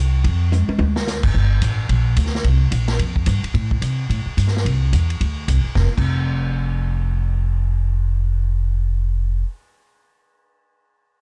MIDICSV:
0, 0, Header, 1, 4, 480
1, 0, Start_track
1, 0, Tempo, 275862
1, 407, Time_signature, 4, 2, 24, 8
1, 19505, End_track
2, 0, Start_track
2, 0, Title_t, "Upright bass"
2, 0, Program_c, 0, 32
2, 0, Note_on_c, 0, 36, 77
2, 369, Note_off_c, 0, 36, 0
2, 422, Note_on_c, 0, 41, 83
2, 1133, Note_off_c, 0, 41, 0
2, 1365, Note_on_c, 0, 38, 76
2, 2083, Note_off_c, 0, 38, 0
2, 2145, Note_on_c, 0, 30, 66
2, 2316, Note_off_c, 0, 30, 0
2, 2337, Note_on_c, 0, 31, 77
2, 2797, Note_off_c, 0, 31, 0
2, 2818, Note_on_c, 0, 33, 70
2, 3277, Note_off_c, 0, 33, 0
2, 3292, Note_on_c, 0, 34, 76
2, 3754, Note_off_c, 0, 34, 0
2, 3770, Note_on_c, 0, 38, 83
2, 4233, Note_off_c, 0, 38, 0
2, 4250, Note_on_c, 0, 36, 81
2, 4713, Note_off_c, 0, 36, 0
2, 4724, Note_on_c, 0, 34, 73
2, 5190, Note_off_c, 0, 34, 0
2, 5203, Note_on_c, 0, 41, 78
2, 5669, Note_off_c, 0, 41, 0
2, 5684, Note_on_c, 0, 43, 85
2, 5956, Note_off_c, 0, 43, 0
2, 6163, Note_on_c, 0, 45, 84
2, 6629, Note_off_c, 0, 45, 0
2, 6641, Note_on_c, 0, 48, 70
2, 7108, Note_off_c, 0, 48, 0
2, 7124, Note_on_c, 0, 45, 72
2, 7396, Note_off_c, 0, 45, 0
2, 7608, Note_on_c, 0, 43, 82
2, 8073, Note_off_c, 0, 43, 0
2, 8089, Note_on_c, 0, 36, 74
2, 8553, Note_off_c, 0, 36, 0
2, 8574, Note_on_c, 0, 40, 78
2, 9035, Note_off_c, 0, 40, 0
2, 9059, Note_on_c, 0, 38, 73
2, 9518, Note_off_c, 0, 38, 0
2, 9536, Note_on_c, 0, 36, 76
2, 9803, Note_off_c, 0, 36, 0
2, 10009, Note_on_c, 0, 29, 83
2, 10171, Note_off_c, 0, 29, 0
2, 10392, Note_on_c, 0, 29, 82
2, 16388, Note_off_c, 0, 29, 0
2, 19505, End_track
3, 0, Start_track
3, 0, Title_t, "Muted upright bass strokes"
3, 1185, Note_on_c, 9, 29, 37
3, 1359, Note_off_c, 9, 29, 0
3, 5974, Note_on_c, 9, 29, 38
3, 6148, Note_off_c, 9, 29, 0
3, 7409, Note_on_c, 9, 29, 34
3, 7583, Note_off_c, 9, 29, 0
3, 9814, Note_on_c, 9, 29, 34
3, 9988, Note_off_c, 9, 29, 0
3, 19505, End_track
4, 0, Start_track
4, 0, Title_t, "Drums"
4, 422, Note_on_c, 9, 51, 52
4, 423, Note_on_c, 9, 36, 32
4, 596, Note_off_c, 9, 51, 0
4, 597, Note_off_c, 9, 36, 0
4, 903, Note_on_c, 9, 44, 55
4, 903, Note_on_c, 9, 48, 39
4, 1077, Note_off_c, 9, 44, 0
4, 1077, Note_off_c, 9, 48, 0
4, 1193, Note_on_c, 9, 48, 47
4, 1367, Note_off_c, 9, 48, 0
4, 1370, Note_on_c, 9, 48, 61
4, 1544, Note_off_c, 9, 48, 0
4, 1671, Note_on_c, 9, 38, 58
4, 1845, Note_off_c, 9, 38, 0
4, 1864, Note_on_c, 9, 38, 52
4, 1864, Note_on_c, 9, 44, 58
4, 2038, Note_off_c, 9, 38, 0
4, 2038, Note_off_c, 9, 44, 0
4, 2141, Note_on_c, 9, 49, 68
4, 2149, Note_on_c, 9, 36, 69
4, 2315, Note_off_c, 9, 49, 0
4, 2323, Note_off_c, 9, 36, 0
4, 2339, Note_on_c, 9, 36, 17
4, 2513, Note_off_c, 9, 36, 0
4, 2809, Note_on_c, 9, 44, 46
4, 2809, Note_on_c, 9, 51, 60
4, 2817, Note_on_c, 9, 36, 19
4, 2983, Note_off_c, 9, 44, 0
4, 2983, Note_off_c, 9, 51, 0
4, 2991, Note_off_c, 9, 36, 0
4, 3290, Note_on_c, 9, 51, 50
4, 3296, Note_on_c, 9, 36, 22
4, 3464, Note_off_c, 9, 51, 0
4, 3470, Note_off_c, 9, 36, 0
4, 3766, Note_on_c, 9, 44, 54
4, 3766, Note_on_c, 9, 51, 66
4, 3772, Note_on_c, 9, 36, 22
4, 3932, Note_on_c, 9, 38, 26
4, 3940, Note_off_c, 9, 44, 0
4, 3940, Note_off_c, 9, 51, 0
4, 3946, Note_off_c, 9, 36, 0
4, 4087, Note_off_c, 9, 38, 0
4, 4087, Note_on_c, 9, 38, 39
4, 4250, Note_on_c, 9, 51, 46
4, 4253, Note_on_c, 9, 36, 25
4, 4261, Note_off_c, 9, 38, 0
4, 4424, Note_off_c, 9, 51, 0
4, 4427, Note_off_c, 9, 36, 0
4, 4726, Note_on_c, 9, 44, 50
4, 4726, Note_on_c, 9, 51, 62
4, 4728, Note_on_c, 9, 36, 19
4, 4900, Note_off_c, 9, 44, 0
4, 4900, Note_off_c, 9, 51, 0
4, 4902, Note_off_c, 9, 36, 0
4, 5011, Note_on_c, 9, 38, 52
4, 5011, Note_on_c, 9, 51, 41
4, 5185, Note_off_c, 9, 38, 0
4, 5185, Note_off_c, 9, 51, 0
4, 5206, Note_on_c, 9, 36, 20
4, 5207, Note_on_c, 9, 51, 55
4, 5380, Note_off_c, 9, 36, 0
4, 5381, Note_off_c, 9, 51, 0
4, 5496, Note_on_c, 9, 36, 41
4, 5670, Note_off_c, 9, 36, 0
4, 5672, Note_on_c, 9, 44, 49
4, 5672, Note_on_c, 9, 51, 58
4, 5684, Note_on_c, 9, 36, 23
4, 5846, Note_off_c, 9, 44, 0
4, 5846, Note_off_c, 9, 51, 0
4, 5858, Note_off_c, 9, 36, 0
4, 5985, Note_on_c, 9, 51, 40
4, 6159, Note_off_c, 9, 51, 0
4, 6166, Note_on_c, 9, 36, 22
4, 6170, Note_on_c, 9, 51, 50
4, 6340, Note_off_c, 9, 36, 0
4, 6344, Note_off_c, 9, 51, 0
4, 6459, Note_on_c, 9, 36, 50
4, 6633, Note_off_c, 9, 36, 0
4, 6645, Note_on_c, 9, 44, 55
4, 6645, Note_on_c, 9, 51, 62
4, 6647, Note_on_c, 9, 36, 17
4, 6819, Note_off_c, 9, 44, 0
4, 6819, Note_off_c, 9, 51, 0
4, 6821, Note_off_c, 9, 36, 0
4, 7132, Note_on_c, 9, 36, 18
4, 7140, Note_on_c, 9, 51, 47
4, 7306, Note_off_c, 9, 36, 0
4, 7314, Note_off_c, 9, 51, 0
4, 7615, Note_on_c, 9, 36, 22
4, 7615, Note_on_c, 9, 44, 49
4, 7615, Note_on_c, 9, 51, 57
4, 7783, Note_on_c, 9, 38, 26
4, 7789, Note_off_c, 9, 36, 0
4, 7789, Note_off_c, 9, 44, 0
4, 7789, Note_off_c, 9, 51, 0
4, 7942, Note_off_c, 9, 38, 0
4, 7942, Note_on_c, 9, 38, 37
4, 8097, Note_on_c, 9, 36, 24
4, 8106, Note_on_c, 9, 51, 46
4, 8116, Note_off_c, 9, 38, 0
4, 8271, Note_off_c, 9, 36, 0
4, 8280, Note_off_c, 9, 51, 0
4, 8575, Note_on_c, 9, 36, 23
4, 8576, Note_on_c, 9, 44, 49
4, 8576, Note_on_c, 9, 51, 56
4, 8749, Note_off_c, 9, 36, 0
4, 8750, Note_off_c, 9, 44, 0
4, 8750, Note_off_c, 9, 51, 0
4, 8872, Note_on_c, 9, 51, 39
4, 9046, Note_off_c, 9, 51, 0
4, 9059, Note_on_c, 9, 36, 18
4, 9060, Note_on_c, 9, 51, 48
4, 9233, Note_off_c, 9, 36, 0
4, 9234, Note_off_c, 9, 51, 0
4, 9535, Note_on_c, 9, 44, 58
4, 9535, Note_on_c, 9, 51, 58
4, 9537, Note_on_c, 9, 36, 22
4, 9709, Note_off_c, 9, 44, 0
4, 9709, Note_off_c, 9, 51, 0
4, 9711, Note_off_c, 9, 36, 0
4, 10011, Note_on_c, 9, 38, 55
4, 10012, Note_on_c, 9, 36, 48
4, 10185, Note_off_c, 9, 38, 0
4, 10186, Note_off_c, 9, 36, 0
4, 10397, Note_on_c, 9, 36, 48
4, 10401, Note_on_c, 9, 49, 52
4, 10571, Note_off_c, 9, 36, 0
4, 10575, Note_off_c, 9, 49, 0
4, 19505, End_track
0, 0, End_of_file